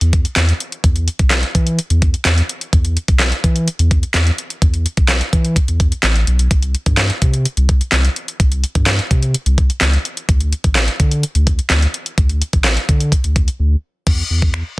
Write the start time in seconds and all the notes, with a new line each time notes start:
0.01 E2, closed hi-hat
0.13 kick, closed hi-hat
0.25 closed hi-hat
0.36 E2, snare, clap, closed hi-hat
0.49 closed hi-hat
0.60 closed hi-hat
0.72 closed hi-hat
0.84 E2, kick, closed hi-hat
0.96 closed hi-hat
1.08 closed hi-hat
1.19 B1, kick, closed hi-hat
1.30 snare, clap, closed hi-hat
1.43 closed hi-hat
1.55 E3, kick, closed hi-hat
1.67 closed hi-hat
1.79 closed hi-hat
1.90 E2, closed hi-hat
2.02 kick, closed hi-hat
2.14 closed hi-hat
2.25 E2, snare, clap, closed hi-hat
2.38 closed hi-hat
2.49 closed hi-hat
2.61 closed hi-hat
2.73 E2, kick, closed hi-hat
2.85 closed hi-hat
2.97 closed hi-hat
3.08 B1, kick, closed hi-hat
3.19 snare, clap, closed hi-hat
3.32 closed hi-hat
3.44 E3, kick, closed hi-hat
3.56 closed hi-hat
3.68 closed hi-hat
3.79 E2, closed hi-hat
3.91 kick, closed hi-hat
4.03 closed hi-hat
4.14 E2, snare, clap, closed hi-hat
4.27 closed hi-hat
4.38 closed hi-hat
4.50 closed hi-hat
4.62 E2, kick, closed hi-hat
4.74 closed hi-hat
4.86 closed hi-hat
4.97 B1, kick, closed hi-hat
5.08 snare, clap, closed hi-hat
5.21 closed hi-hat
5.33 E3, kick, closed hi-hat
5.45 closed hi-hat
5.56 kick, closed hi-hat
5.68 E2, closed hi-hat
5.80 kick, closed hi-hat
5.92 closed hi-hat
6.03 A1, snare, clap, closed hi-hat
6.16 closed hi-hat
6.27 B1, closed hi-hat
6.39 closed hi-hat
6.51 C2, kick, closed hi-hat
6.62 closed hi-hat
6.75 closed hi-hat
6.86 G2, kick, closed hi-hat
6.97 snare, clap, closed hi-hat
7.10 closed hi-hat
7.22 C3, kick, closed hi-hat
7.34 closed hi-hat
7.45 closed hi-hat
7.57 C2, closed hi-hat
7.69 kick, closed hi-hat
7.81 closed hi-hat
7.92 C2, snare, clap, closed hi-hat
8.05 closed hi-hat
8.16 closed hi-hat
8.28 closed hi-hat
8.40 C2, kick, closed hi-hat
8.52 closed hi-hat
8.64 closed hi-hat
8.75 G2, kick, closed hi-hat
8.86 snare, clap, closed hi-hat
8.99 closed hi-hat
9.11 C3, kick, closed hi-hat
9.23 closed hi-hat
9.34 closed hi-hat
9.46 C2, closed hi-hat
9.58 kick, closed hi-hat
9.70 closed hi-hat
9.81 C#2, snare, clap, closed hi-hat
9.93 closed hi-hat
10.05 closed hi-hat
10.17 closed hi-hat
10.29 D2, kick, closed hi-hat
10.40 closed hi-hat
10.53 closed hi-hat
10.64 A1, kick, closed hi-hat
10.75 snare, clap, closed hi-hat
10.88 closed hi-hat
11.00 D3, kick, closed hi-hat
11.11 closed hi-hat
11.23 closed hi-hat
11.35 D2, closed hi-hat
11.47 kick, closed hi-hat
11.59 closed hi-hat
11.70 D2, snare, clap, closed hi-hat
11.82 closed hi-hat
11.94 closed hi-hat
12.06 closed hi-hat
12.18 D2, kick, closed hi-hat
12.29 closed hi-hat
12.42 closed hi-hat
12.53 A1, kick, closed hi-hat
12.64 snare, clap, closed hi-hat
12.77 closed hi-hat
12.89 D3, kick, closed hi-hat
13.00 closed hi-hat
13.12 kick, closed hi-hat
13.24 D2, closed hi-hat
13.36 kick, closed hi-hat
13.48 closed hi-hat
13.60 D2
14.07 E2, kick, crash
14.30 E2
14.42 kick
14.54 finger snap